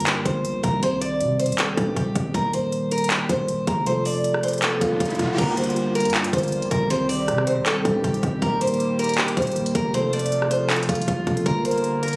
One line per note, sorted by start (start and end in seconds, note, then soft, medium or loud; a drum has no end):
0.00 0.24 G2 loud
0.00 0.78 D3 medium
0.00 0.79 G3 medium
0.00 0.79 A#3 medium
0.00 0.80 F4 medium
0.00 0.81 A#4 medium
0.00 closed hi-hat medium
0.07 0.23 G4 medium
0.07 clap loud
0.07 closed hi-hat medium
0.25 0.56 G1 loud
0.25 0.61 C5 medium
0.25 kick medium
0.25 closed hi-hat medium
0.45 closed hi-hat medium
0.55 0.63 A1 loud
0.63 1.22 C2 loud
0.63 0.80 A#4 medium
0.63 kick loud
0.63 closed hi-hat medium
0.80 2.12 D#3 medium
0.80 2.12 G3 medium
0.80 2.13 C4 medium
0.80 2.14 G4 medium
0.80 0.99 C5 loud
0.80 closed hi-hat medium
0.85 2.14 C5 medium
1.01 1.37 D5 medium
1.01 closed hi-hat medium
1.21 1.51 C3 loud
1.21 closed hi-hat medium
1.39 1.56 C5 medium
1.39 closed hi-hat medium
1.46 1.76 C2 loud
1.46 closed hi-hat medium
1.52 closed hi-hat medium
1.58 1.75 A4 medium
1.58 clap loud
1.58 closed hi-hat medium
1.77 1.96 G2 loud
1.77 1.94 G4 medium
1.77 kick loud
1.77 closed hi-hat medium
1.96 2.15 C2 loud
1.96 2.32 G4 medium
1.96 kick loud
1.96 closed hi-hat medium
2.14 2.34 C2 loud
2.14 2.31 D#3 soft
2.14 2.32 G3 soft
2.14 2.34 C4 soft
2.14 2.34 G4 soft
2.14 2.35 D#5 medium
2.14 kick loud
2.14 closed hi-hat medium
2.32 3.26 D#1 loud
2.32 3.82 D#3 medium
2.32 3.83 G3 medium
2.32 3.83 A#3 medium
2.32 3.84 G4 medium
2.32 2.51 A#4 loud
2.32 kick loud
2.32 closed hi-hat medium
2.37 3.85 A#4 medium
2.53 2.89 C5 medium
2.53 closed hi-hat medium
2.72 closed hi-hat medium
2.91 3.08 A#4 medium
2.91 closed hi-hat medium
2.98 closed hi-hat medium
3.04 closed hi-hat medium
3.10 3.27 G4 medium
3.10 clap loud
3.10 closed hi-hat medium
3.29 3.66 D#1 loud
3.29 3.65 C5 medium
3.29 kick medium
3.29 closed hi-hat medium
3.48 closed hi-hat medium
3.67 4.77 F1 loud
3.67 3.84 A#4 medium
3.67 kick loud
3.67 closed hi-hat medium
3.84 5.15 C3 medium
3.84 5.16 F3 medium
3.84 5.17 A3 medium
3.84 5.17 F4 medium
3.84 4.03 C5 loud
3.84 closed hi-hat medium
3.84 riser medium
3.89 5.18 A4 medium
4.05 4.41 D5 medium
4.05 open hi-hat medium
4.24 closed hi-hat medium
4.34 cross-stick medium
4.43 4.60 C5 medium
4.43 closed hi-hat medium
4.48 closed hi-hat medium
4.53 closed hi-hat medium
4.58 closed hi-hat soft
4.62 4.79 A4 medium
4.62 clap loud
4.62 closed hi-hat medium
4.81 5.00 F1 loud
4.81 4.98 F4 medium
4.81 kick loud
4.81 closed hi-hat medium
5.00 5.19 F1 loud
5.00 5.36 F4 medium
5.00 kick loud
5.00 closed hi-hat medium
5.05 closed hi-hat medium
5.10 closed hi-hat medium
5.15 5.38 C3 soft
5.15 5.38 F3 soft
5.15 closed hi-hat soft
5.19 5.38 D#1 loud
5.19 5.38 A3 soft
5.19 5.38 F4 soft
5.19 5.39 A4 medium
5.19 kick loud
5.19 closed hi-hat medium
5.36 6.07 G1 loud
5.36 6.86 D3 medium
5.36 6.89 D3 medium
5.36 6.86 G3 medium
5.36 8.39 G3 medium
5.36 6.87 A#3 medium
5.36 6.89 A#3 medium
5.36 6.89 F4 medium
5.36 6.88 F4 medium
5.36 5.55 A#4 loud
5.36 kick loud
5.36 closed hi-hat medium
5.36 crash loud
5.41 6.88 A#4 medium
5.57 5.93 C5 medium
5.57 closed hi-hat medium
5.64 closed hi-hat medium
5.70 closed hi-hat medium
5.76 closed hi-hat medium
5.95 6.12 A#4 medium
5.95 closed hi-hat medium
6.00 closed hi-hat medium
6.05 6.32 G2 loud
6.05 closed hi-hat medium
6.10 closed hi-hat medium
6.14 6.31 G4 medium
6.14 clap loud
6.14 closed hi-hat soft
6.24 closed hi-hat medium
6.33 6.64 G1 loud
6.33 6.69 C5 medium
6.33 kick loud
6.33 closed hi-hat medium
6.38 closed hi-hat medium
6.43 closed hi-hat medium
6.48 closed hi-hat soft
6.52 closed hi-hat medium
6.62 6.71 A1 loud
6.62 closed hi-hat medium
6.71 7.30 C2 loud
6.71 6.88 A#4 medium
6.71 kick loud
6.71 closed hi-hat medium
6.88 8.19 D#3 medium
6.88 9.91 D#3 medium
6.88 8.20 G3 medium
6.88 8.41 C4 medium
6.88 8.21 C4 medium
6.88 9.91 G4 medium
6.88 8.21 G4 medium
6.88 7.07 C5 loud
6.88 closed hi-hat medium
6.93 8.22 C5 medium
7.09 7.45 D5 medium
7.09 open hi-hat medium
7.28 7.59 C3 loud
7.28 cross-stick medium
7.28 closed hi-hat medium
7.38 cross-stick medium
7.47 7.64 C5 medium
7.47 closed hi-hat medium
7.57 7.84 C2 loud
7.66 7.83 A4 medium
7.66 clap loud
7.66 closed hi-hat medium
7.85 8.03 G2 loud
7.85 8.02 G4 medium
7.85 kick loud
7.85 closed hi-hat medium
8.04 8.22 C2 loud
8.04 8.40 G4 medium
8.04 kick loud
8.04 closed hi-hat medium
8.14 closed hi-hat medium
8.22 8.41 C2 loud
8.22 8.38 D#3 soft
8.22 8.39 G3 soft
8.22 8.42 C4 soft
8.22 8.42 G4 soft
8.22 8.43 D#5 medium
8.22 kick loud
8.22 closed hi-hat medium
8.39 9.33 D#1 loud
8.39 9.90 D#3 medium
8.39 9.90 G3 medium
8.39 9.92 G3 medium
8.39 9.91 A#3 medium
8.39 9.92 A#3 medium
8.39 9.92 G4 medium
8.39 8.58 A#4 loud
8.39 kick loud
8.39 closed hi-hat medium
8.45 9.92 A#4 medium
8.61 8.97 C5 medium
8.61 closed hi-hat medium
8.67 closed hi-hat medium
8.74 closed hi-hat medium
8.80 closed hi-hat medium
8.99 9.16 A#4 medium
8.99 closed hi-hat medium
9.04 closed hi-hat medium
9.09 closed hi-hat medium
9.14 closed hi-hat medium
9.18 9.35 G4 medium
9.18 clap loud
9.18 closed hi-hat soft
9.28 closed hi-hat medium
9.37 9.73 D#1 loud
9.37 9.73 C5 medium
9.37 kick loud
9.37 closed hi-hat medium
9.42 closed hi-hat medium
9.47 closed hi-hat medium
9.52 closed hi-hat soft
9.56 closed hi-hat medium
9.66 closed hi-hat medium
9.75 10.85 F1 loud
9.75 9.91 A#4 medium
9.75 kick loud
9.75 closed hi-hat medium
9.91 11.23 C3 medium
9.91 11.44 C3 medium
9.91 11.23 F3 medium
9.91 11.44 F3 medium
9.91 11.24 A3 medium
9.91 11.44 A3 medium
9.91 12.16 F4 medium
9.91 11.25 F4 medium
9.91 10.11 C5 loud
9.91 closed hi-hat medium
9.96 11.25 A4 medium
10.13 10.49 D5 medium
10.13 closed hi-hat medium
10.13 open hi-hat medium
10.19 closed hi-hat medium
10.26 closed hi-hat medium
10.32 closed hi-hat medium
10.42 cross-stick medium
10.51 10.67 C5 medium
10.51 closed hi-hat medium
10.70 10.86 A4 medium
10.70 clap loud
10.70 closed hi-hat medium
10.76 closed hi-hat medium
10.83 closed hi-hat medium
10.89 11.07 F1 loud
10.89 11.05 F4 medium
10.89 kick loud
10.89 closed hi-hat medium
10.95 closed hi-hat medium
11.02 closed hi-hat medium
11.08 11.26 F1 loud
11.08 11.44 F4 medium
11.08 kick loud
11.08 closed hi-hat medium
11.26 11.45 D#1 loud
11.26 11.45 C3 soft
11.26 11.46 F3 soft
11.26 11.46 A3 medium
11.26 11.46 F4 soft
11.26 11.47 A4 medium
11.26 kick loud
11.26 closed hi-hat soft
11.37 closed hi-hat medium
11.43 12.14 G1 loud
11.43 12.16 D3 medium
11.43 12.16 G3 medium
11.43 12.16 A#3 medium
11.43 12.16 F4 medium
11.43 11.63 A#4 loud
11.43 kick loud
11.43 closed hi-hat medium
11.48 12.16 A#4 medium
11.65 12.16 A#4 loud
11.65 12.01 C5 medium
11.65 closed hi-hat medium
11.71 closed hi-hat medium
11.78 closed hi-hat soft
11.84 closed hi-hat medium
12.03 12.16 A#4 medium
12.03 closed hi-hat medium
12.08 closed hi-hat medium
12.13 12.16 G2 loud
12.13 closed hi-hat medium